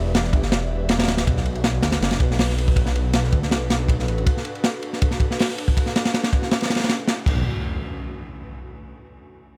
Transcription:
Already playing: detuned saw bass E1
0.15 snare, ride
0.23 snare
0.33 detuned saw bass G1, kick, ride
0.42 snare
0.52 detuned saw bass E1, snare, ride
0.89 snare, ride
0.99 snare, ride
1.03 snare, ride
1.08 detuned saw bass D1, snare, ride
1.17 snare, ride
1.27 detuned saw bass B1, kick, ride, sub drop
1.37 snare
1.45 ride
1.55 ride
1.64 snare, ride
1.82 detuned saw bass D2, snare, ride
1.92 snare, ride
2.01 detuned saw bass F#1, snare, ride
2.11 snare, ride
2.20 detuned saw bass B1, kick, ride
2.31 snare
2.39 snare, open hi-hat
2.50 snare
2.58 ride
2.68 kick
2.76 detuned saw bass B1, kick, ride
2.86 snare
2.95 ride
3.13 snare, ride
3.24 snare
3.32 detuned saw bass D2, kick, ride
3.43 snare
3.51 detuned saw bass B1, snare, ride
3.70 snare, ride
3.88 kick, ride
3.99 snare
4.08 detuned saw bass A1, ride
4.18 ride
4.27 kick, ride
4.37 snare
4.45 ride
4.55 ride
4.64 snare, ride
4.82 ride
4.93 snare
5.02 kick, ride
5.11 snare
5.20 kick, ride
5.31 snare
5.39 snare, open hi-hat
5.49 snare
5.58 ride
5.68 kick
5.77 kick, ride
5.86 snare
5.96 snare, ride
6.05 snare, ride
6.14 snare, ride
6.24 snare, ride
6.33 kick, ride
6.42 snare
6.51 snare, ride
6.61 snare, ride
6.65 snare, ride
6.70 snare, ride
6.75 snare, ride
6.79 snare, ride
6.84 snare, ride
6.89 snare, ride
7.08 snare, ride
7.26 detuned saw bass B1, kick, crash, impact

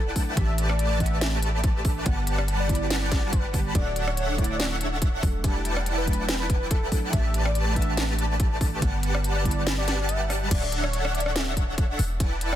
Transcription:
Already playing: 808-style bass E1, synth pluck F#3 A3 D4, supersaw synth E4 B4 D5 F#5 G5 A5, soft synth lead A4, digital synth lead A5
0.15 synth pluck F#3 A3 D4 A4, kick, open hi-hat
0.35 808-style bass A1, synth pluck E3 A3 D4 G4, supersaw synth A3 G4 B4 D5 A5, soft synth lead E5, digital synth lead A5, kick, closed hi-hat
0.58 closed hi-hat
0.69 soft synth lead D5, cross-stick
0.79 closed hi-hat
0.98 synth pluck E3 A3 D4 F#5, supersaw synth A3 G4 B4 D5 A5, soft synth lead E5, digital synth lead A5, kick, closed hi-hat
1.06 closed hi-hat
1.21 snare, closed hi-hat
1.42 closed hi-hat
1.64 kick, closed hi-hat
1.84 synth pluck E3 A3 D4 A4, kick, open hi-hat
2.04 808-style bass G1, synth pluck D3 G3 B3 F#5, supersaw synth G3 G4 B4 F#5 A5, digital synth lead A5, kick, closed hi-hat
2.27 closed hi-hat
2.38 cross-stick
2.48 closed hi-hat
2.60 soft synth lead D5
2.67 synth pluck D3 G3 B3, supersaw synth G3 G4 B4 F#5 A5, digital synth lead A5, kick, closed hi-hat
2.71 synth pluck E4, closed hi-hat
2.90 snare, closed hi-hat
3.02 soft synth lead D5
3.12 supersaw synth G3 G4 B4 F#5 A5, digital synth lead A5, kick, snare, closed hi-hat
3.23 supersaw synth G3 G4 B4 F#5 A5, digital synth lead A5
3.33 soft synth lead B4, kick, closed hi-hat
3.53 synth pluck D3 G3 B3 G4, kick, open hi-hat
3.73 808-style bass D1, synth pluck D3 A3 F#4 A4, supersaw synth D4 A4 C#5 F#5, soft synth lead D5, digital synth lead F#5, kick, closed hi-hat, ride
3.96 closed hi-hat
4.08 soft synth lead C#5, cross-stick
4.17 closed hi-hat
4.36 synth pluck D3 A3 E4 C#5, supersaw synth D4 A4 C#5 E5 F#5, soft synth lead D5, digital synth lead F#5, kick, closed hi-hat
4.44 closed hi-hat
4.60 snare, closed hi-hat
4.81 closed hi-hat
5.02 kick, closed hi-hat
5.22 808-style bass E1, synth pluck F#3 A3 D4 A4, kick, open hi-hat
5.42 synth pluck G3 A3 D4 G4, supersaw synth E4 B4 D5 F#5 G5 A5, digital synth lead A5, kick, closed hi-hat, ride
5.65 closed hi-hat
5.77 cross-stick
5.86 closed hi-hat
5.98 soft synth lead B4
6.05 synth pluck F#3 A3 D4, supersaw synth E4 B4 D5 F#5 G5 A5, digital synth lead A5, kick, closed hi-hat
6.13 closed hi-hat
6.29 snare, closed hi-hat
6.40 soft synth lead B4
6.50 kick, closed hi-hat
6.71 soft synth lead A4, kick, closed hi-hat
6.91 synth pluck F#3 A3 D4 A4, kick, open hi-hat
7.11 808-style bass A1, synth pluck E3 A3 D4, supersaw synth A3 G4 B4 D5 A5, soft synth lead E5, digital synth lead A5, kick, closed hi-hat, ride
7.15 synth pluck G4
7.34 closed hi-hat
7.45 soft synth lead D5, cross-stick
7.55 closed hi-hat
7.74 synth pluck E3 A3 D4 F#5, soft synth lead E5, digital synth lead A5, kick, closed hi-hat
7.82 closed hi-hat
7.97 snare, closed hi-hat
8.19 closed hi-hat
8.40 kick, closed hi-hat
8.60 synth pluck E3 A3 D4 A4, kick, open hi-hat
8.80 808-style bass G1, synth pluck D3 G3 B3 F#5, supersaw synth G3 B4 F#5 A5, digital synth lead A5, kick, closed hi-hat, ride
9.03 closed hi-hat
9.15 cross-stick
9.24 closed hi-hat
9.36 soft synth lead D5
9.43 synth pluck D3 G3 B3 E4, supersaw synth G3 G4 B4 F#5 A5, digital synth lead A5, kick, closed hi-hat
9.51 closed hi-hat
9.67 snare, closed hi-hat
9.78 soft synth lead D5
9.88 supersaw synth G3 G4 B4 F#5 A5, digital synth lead A5, snare, closed hi-hat
9.99 supersaw synth G3 G4 B4 F#5 A5, digital synth lead A5
10.09 soft synth lead E5, closed hi-hat
10.30 cross-stick, open hi-hat
10.51 808-style bass D1, supersaw synth D4 A4 C#5 F#5, soft synth lead D5, digital synth lead F#5, kick, closed hi-hat, crash, ride
10.72 closed hi-hat
10.84 soft synth lead C#5, cross-stick
10.93 closed hi-hat
11.05 cross-stick
11.14 supersaw synth D4 A4 C#5 E5 F#5, soft synth lead D5, digital synth lead F#5, closed hi-hat
11.20 closed hi-hat
11.26 cross-stick
11.36 snare, closed hi-hat
11.57 kick, closed hi-hat
11.78 kick, closed hi-hat
11.99 808-style bass E1, open hi-hat
12.20 supersaw synth E4 B4 D5 F#5 G5 A5, digital synth lead A5, kick, closed hi-hat, ride
12.41 closed hi-hat
12.53 cross-stick

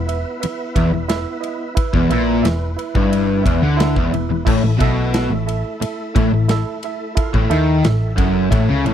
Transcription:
Already playing: picked electric bass E1, overdriven electric guitar E2, tonewheel organ B3 E4 B4 E5
0.07 reed electric piano E4 B4 E5, ride
0.40 reed electric piano E4 B4 E5, muted picked electric bass stroke, muted overdriven electric guitar stroke, ride
0.75 picked electric bass E1, overdriven electric guitar E2, reed electric piano E4 B4 E5, kick, ride
0.92 picked electric bass E1, overdriven electric guitar E2
1.08 reed electric piano E4 B4 E5, snare, ride
1.40 reed electric piano E4 B4 D#5, ride
1.75 reed electric piano E4 B4 E5, tonewheel organ E4 B4, kick, ride
1.94 picked electric bass E1, overdriven electric guitar E2, kick
2.09 picked electric bass A#1, overdriven electric guitar A#2, reed electric piano E4 B4 E5, ride
2.42 picked electric bass E1, overdriven electric guitar E2, reed electric piano E4 B4 E5, snare, ride
2.77 reed electric piano E4 B4 E5, ride
2.95 picked electric bass G1, overdriven electric guitar G2, kick
3.10 reed electric piano E4 B4 E5, ride
3.41 reed electric piano E4 B4 E5
3.46 picked electric bass E1, overdriven electric guitar E2, kick, ride
3.62 picked electric bass D2, overdriven electric guitar D3
3.77 reed electric piano E4 B4 E5, snare, ride
3.96 picked electric bass E1, overdriven electric guitar E2, kick
4.11 picked electric bass E1, overdriven electric guitar E2, reed electric piano E4 B4 E5, ride
4.30 picked electric bass E1, overdriven electric guitar E2
4.45 picked electric bass A1, overdriven electric guitar A2, tonewheel organ A3 E4 A4 E5, reed electric piano E4 A4 E5, kick, crash
4.64 picked electric bass A1, overdriven electric guitar A2
4.79 picked electric bass B1, overdriven electric guitar B2, reed electric piano E4 A4 E5, kick, ride
5.13 reed electric piano E4 A4 E5, snare, ride
5.30 picked electric bass A1, overdriven electric guitar A2
5.46 reed electric piano E4 A4 E5, ride
5.81 reed electric piano E4 A4 E5, muted picked electric bass stroke, muted overdriven electric guitar stroke, ride
6.14 picked electric bass A1, overdriven electric guitar A2, reed electric piano E4 A4 E5, kick, ride
6.31 picked electric bass A1, overdriven electric guitar A2
6.49 reed electric piano E4 A4 E5, snare, ride
6.83 reed electric piano E4 A4 E5, ride
7.15 reed electric piano E4 A4 E5, tonewheel organ F4 A#4 F5, kick, ride
7.34 picked electric bass A1, overdriven electric guitar A2, kick
7.41 tonewheel organ A4 E5
7.50 picked electric bass D#2, overdriven electric guitar D#3, reed electric piano E4 A4 E5, ride
7.83 picked electric bass A1, overdriven electric guitar A2, reed electric piano E4 A4 E5, snare, ride
8.15 picked electric bass F#1, overdriven electric guitar F#2, reed electric piano E4 A4 F#5, kick, ride
8.49 picked electric bass A1, overdriven electric guitar A2, reed electric piano E4 A4 E5, kick, ride
8.69 picked electric bass C#2, overdriven electric guitar C#3
8.84 picked electric bass A1, overdriven electric guitar A2, reed electric piano E4 A4 E5, ride

